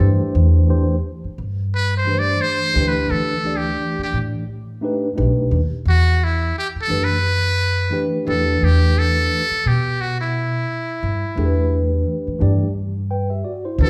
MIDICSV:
0, 0, Header, 1, 5, 480
1, 0, Start_track
1, 0, Key_signature, 1, "minor"
1, 0, Tempo, 689655
1, 238, Time_signature, 4, 2, 24, 8
1, 9673, End_track
2, 0, Start_track
2, 0, Title_t, "Muted trumpet"
2, 0, Program_c, 0, 59
2, 0, Note_on_c, 0, 69, 100
2, 148, Note_off_c, 0, 69, 0
2, 1218, Note_on_c, 0, 71, 98
2, 1358, Note_off_c, 0, 71, 0
2, 1374, Note_on_c, 0, 72, 91
2, 1521, Note_on_c, 0, 74, 100
2, 1532, Note_off_c, 0, 72, 0
2, 1681, Note_on_c, 0, 72, 106
2, 1692, Note_off_c, 0, 74, 0
2, 2004, Note_on_c, 0, 71, 90
2, 2014, Note_off_c, 0, 72, 0
2, 2161, Note_on_c, 0, 69, 94
2, 2172, Note_off_c, 0, 71, 0
2, 2484, Note_on_c, 0, 67, 82
2, 2494, Note_off_c, 0, 69, 0
2, 2801, Note_off_c, 0, 67, 0
2, 2808, Note_on_c, 0, 67, 77
2, 2914, Note_off_c, 0, 67, 0
2, 4099, Note_on_c, 0, 66, 106
2, 4343, Note_on_c, 0, 64, 90
2, 4354, Note_off_c, 0, 66, 0
2, 4571, Note_off_c, 0, 64, 0
2, 4582, Note_on_c, 0, 67, 91
2, 4649, Note_off_c, 0, 67, 0
2, 4744, Note_on_c, 0, 69, 97
2, 4902, Note_on_c, 0, 71, 103
2, 4912, Note_off_c, 0, 69, 0
2, 5610, Note_off_c, 0, 71, 0
2, 5767, Note_on_c, 0, 69, 89
2, 6015, Note_on_c, 0, 67, 95
2, 6025, Note_off_c, 0, 69, 0
2, 6253, Note_on_c, 0, 69, 104
2, 6263, Note_off_c, 0, 67, 0
2, 6735, Note_on_c, 0, 67, 87
2, 6745, Note_off_c, 0, 69, 0
2, 6968, Note_on_c, 0, 66, 92
2, 6978, Note_off_c, 0, 67, 0
2, 7099, Note_off_c, 0, 66, 0
2, 7103, Note_on_c, 0, 64, 74
2, 8272, Note_off_c, 0, 64, 0
2, 9625, Note_on_c, 0, 69, 103
2, 9673, Note_off_c, 0, 69, 0
2, 9673, End_track
3, 0, Start_track
3, 0, Title_t, "Tine electric piano"
3, 0, Program_c, 1, 4
3, 0, Note_on_c, 1, 52, 84
3, 0, Note_on_c, 1, 57, 78
3, 0, Note_on_c, 1, 62, 73
3, 0, Note_on_c, 1, 67, 79
3, 0, Note_on_c, 1, 69, 91
3, 1, Note_on_c, 1, 72, 92
3, 203, Note_off_c, 1, 69, 0
3, 457, Note_off_c, 1, 52, 0
3, 463, Note_off_c, 1, 57, 0
3, 466, Note_on_c, 1, 52, 79
3, 470, Note_off_c, 1, 62, 0
3, 471, Note_on_c, 1, 57, 66
3, 476, Note_off_c, 1, 67, 0
3, 478, Note_on_c, 1, 62, 71
3, 480, Note_off_c, 1, 72, 0
3, 484, Note_on_c, 1, 67, 73
3, 489, Note_on_c, 1, 72, 85
3, 651, Note_off_c, 1, 52, 0
3, 654, Note_off_c, 1, 57, 0
3, 657, Note_off_c, 1, 62, 0
3, 660, Note_off_c, 1, 67, 0
3, 663, Note_off_c, 1, 72, 0
3, 1427, Note_on_c, 1, 52, 63
3, 1432, Note_on_c, 1, 57, 54
3, 1439, Note_on_c, 1, 62, 56
3, 1445, Note_on_c, 1, 67, 57
3, 1453, Note_on_c, 1, 71, 58
3, 1496, Note_on_c, 1, 72, 74
3, 1498, Note_off_c, 1, 71, 0
3, 1896, Note_off_c, 1, 52, 0
3, 1903, Note_off_c, 1, 57, 0
3, 1905, Note_on_c, 1, 52, 89
3, 1908, Note_off_c, 1, 62, 0
3, 1911, Note_on_c, 1, 57, 75
3, 1914, Note_off_c, 1, 67, 0
3, 1917, Note_on_c, 1, 62, 83
3, 1922, Note_on_c, 1, 67, 77
3, 1930, Note_on_c, 1, 71, 93
3, 1947, Note_off_c, 1, 72, 0
3, 2318, Note_off_c, 1, 52, 0
3, 2321, Note_off_c, 1, 57, 0
3, 2324, Note_off_c, 1, 62, 0
3, 2326, Note_off_c, 1, 67, 0
3, 2331, Note_off_c, 1, 71, 0
3, 2389, Note_on_c, 1, 52, 72
3, 2396, Note_on_c, 1, 57, 64
3, 2399, Note_on_c, 1, 62, 61
3, 2408, Note_on_c, 1, 67, 63
3, 2414, Note_on_c, 1, 74, 70
3, 3073, Note_off_c, 1, 52, 0
3, 3076, Note_off_c, 1, 57, 0
3, 3078, Note_off_c, 1, 62, 0
3, 3082, Note_off_c, 1, 67, 0
3, 3085, Note_off_c, 1, 74, 0
3, 3348, Note_on_c, 1, 57, 84
3, 3355, Note_on_c, 1, 62, 78
3, 3359, Note_on_c, 1, 63, 85
3, 3366, Note_on_c, 1, 67, 76
3, 3372, Note_on_c, 1, 71, 92
3, 3532, Note_off_c, 1, 57, 0
3, 3536, Note_off_c, 1, 62, 0
3, 3537, Note_off_c, 1, 63, 0
3, 3541, Note_off_c, 1, 67, 0
3, 3544, Note_off_c, 1, 71, 0
3, 3583, Note_on_c, 1, 57, 75
3, 3591, Note_on_c, 1, 62, 71
3, 3597, Note_on_c, 1, 63, 71
3, 3602, Note_on_c, 1, 67, 67
3, 3606, Note_on_c, 1, 71, 75
3, 3886, Note_off_c, 1, 57, 0
3, 3890, Note_off_c, 1, 62, 0
3, 3893, Note_off_c, 1, 63, 0
3, 3895, Note_off_c, 1, 67, 0
3, 3897, Note_off_c, 1, 71, 0
3, 4785, Note_on_c, 1, 52, 74
3, 4790, Note_on_c, 1, 57, 70
3, 4796, Note_on_c, 1, 62, 66
3, 4801, Note_on_c, 1, 67, 61
3, 4808, Note_on_c, 1, 71, 85
3, 4971, Note_off_c, 1, 52, 0
3, 4973, Note_off_c, 1, 57, 0
3, 4976, Note_off_c, 1, 62, 0
3, 4979, Note_off_c, 1, 67, 0
3, 4982, Note_off_c, 1, 71, 0
3, 5499, Note_on_c, 1, 52, 86
3, 5503, Note_on_c, 1, 57, 76
3, 5509, Note_on_c, 1, 62, 75
3, 5517, Note_on_c, 1, 67, 75
3, 5523, Note_on_c, 1, 71, 88
3, 5734, Note_off_c, 1, 52, 0
3, 5739, Note_off_c, 1, 57, 0
3, 5743, Note_on_c, 1, 52, 88
3, 5748, Note_off_c, 1, 62, 0
3, 5748, Note_on_c, 1, 57, 75
3, 5752, Note_off_c, 1, 67, 0
3, 5756, Note_on_c, 1, 62, 82
3, 5758, Note_off_c, 1, 71, 0
3, 5761, Note_on_c, 1, 67, 73
3, 5767, Note_on_c, 1, 71, 94
3, 6547, Note_off_c, 1, 52, 0
3, 6549, Note_off_c, 1, 57, 0
3, 6553, Note_off_c, 1, 62, 0
3, 6556, Note_off_c, 1, 67, 0
3, 6559, Note_off_c, 1, 71, 0
3, 7903, Note_on_c, 1, 52, 79
3, 7907, Note_on_c, 1, 57, 69
3, 7914, Note_on_c, 1, 62, 73
3, 7922, Note_on_c, 1, 67, 71
3, 7927, Note_on_c, 1, 69, 68
3, 7972, Note_on_c, 1, 71, 88
3, 7975, Note_off_c, 1, 69, 0
3, 8590, Note_off_c, 1, 52, 0
3, 8592, Note_off_c, 1, 57, 0
3, 8595, Note_off_c, 1, 62, 0
3, 8600, Note_off_c, 1, 67, 0
3, 8622, Note_on_c, 1, 52, 90
3, 8624, Note_off_c, 1, 71, 0
3, 8628, Note_on_c, 1, 57, 78
3, 8634, Note_on_c, 1, 62, 90
3, 8642, Note_on_c, 1, 67, 81
3, 8645, Note_on_c, 1, 74, 95
3, 8809, Note_off_c, 1, 52, 0
3, 8812, Note_off_c, 1, 57, 0
3, 8815, Note_off_c, 1, 62, 0
3, 8819, Note_off_c, 1, 67, 0
3, 8821, Note_off_c, 1, 74, 0
3, 9122, Note_on_c, 1, 79, 72
3, 9123, Note_on_c, 1, 71, 62
3, 9252, Note_off_c, 1, 71, 0
3, 9252, Note_off_c, 1, 79, 0
3, 9258, Note_on_c, 1, 76, 66
3, 9264, Note_on_c, 1, 67, 50
3, 9353, Note_off_c, 1, 76, 0
3, 9357, Note_off_c, 1, 67, 0
3, 9357, Note_on_c, 1, 74, 65
3, 9360, Note_on_c, 1, 66, 62
3, 9489, Note_off_c, 1, 74, 0
3, 9490, Note_off_c, 1, 66, 0
3, 9500, Note_on_c, 1, 72, 68
3, 9505, Note_on_c, 1, 64, 56
3, 9590, Note_on_c, 1, 52, 87
3, 9598, Note_on_c, 1, 57, 76
3, 9603, Note_on_c, 1, 62, 89
3, 9611, Note_on_c, 1, 66, 65
3, 9613, Note_on_c, 1, 71, 91
3, 9657, Note_off_c, 1, 66, 0
3, 9673, Note_off_c, 1, 52, 0
3, 9673, Note_off_c, 1, 57, 0
3, 9673, Note_off_c, 1, 62, 0
3, 9673, Note_off_c, 1, 64, 0
3, 9673, Note_off_c, 1, 71, 0
3, 9673, Note_off_c, 1, 72, 0
3, 9673, End_track
4, 0, Start_track
4, 0, Title_t, "Upright bass"
4, 0, Program_c, 2, 32
4, 0, Note_on_c, 2, 43, 86
4, 126, Note_off_c, 2, 43, 0
4, 243, Note_on_c, 2, 40, 94
4, 693, Note_off_c, 2, 40, 0
4, 962, Note_on_c, 2, 43, 82
4, 1652, Note_off_c, 2, 43, 0
4, 1917, Note_on_c, 2, 38, 106
4, 2138, Note_off_c, 2, 38, 0
4, 2159, Note_on_c, 2, 38, 94
4, 2611, Note_off_c, 2, 38, 0
4, 2877, Note_on_c, 2, 45, 88
4, 3603, Note_on_c, 2, 35, 104
4, 3613, Note_off_c, 2, 45, 0
4, 3821, Note_off_c, 2, 35, 0
4, 3837, Note_on_c, 2, 39, 87
4, 3965, Note_off_c, 2, 39, 0
4, 4075, Note_on_c, 2, 40, 92
4, 4529, Note_off_c, 2, 40, 0
4, 4802, Note_on_c, 2, 42, 83
4, 5492, Note_off_c, 2, 42, 0
4, 5760, Note_on_c, 2, 40, 104
4, 5979, Note_off_c, 2, 40, 0
4, 5998, Note_on_c, 2, 40, 89
4, 6450, Note_off_c, 2, 40, 0
4, 6722, Note_on_c, 2, 47, 98
4, 7412, Note_off_c, 2, 47, 0
4, 7675, Note_on_c, 2, 43, 92
4, 7804, Note_off_c, 2, 43, 0
4, 7917, Note_on_c, 2, 40, 98
4, 8370, Note_off_c, 2, 40, 0
4, 8639, Note_on_c, 2, 43, 82
4, 9331, Note_off_c, 2, 43, 0
4, 9595, Note_on_c, 2, 38, 101
4, 9673, Note_off_c, 2, 38, 0
4, 9673, End_track
5, 0, Start_track
5, 0, Title_t, "Muted upright bass strokes"
5, 865, Note_on_c, 9, 29, 46
5, 935, Note_off_c, 9, 29, 0
5, 2774, Note_on_c, 9, 29, 47
5, 2844, Note_off_c, 9, 29, 0
5, 4701, Note_on_c, 9, 29, 42
5, 4770, Note_off_c, 9, 29, 0
5, 6616, Note_on_c, 9, 29, 48
5, 6686, Note_off_c, 9, 29, 0
5, 8542, Note_on_c, 9, 29, 49
5, 8612, Note_off_c, 9, 29, 0
5, 9673, End_track
0, 0, End_of_file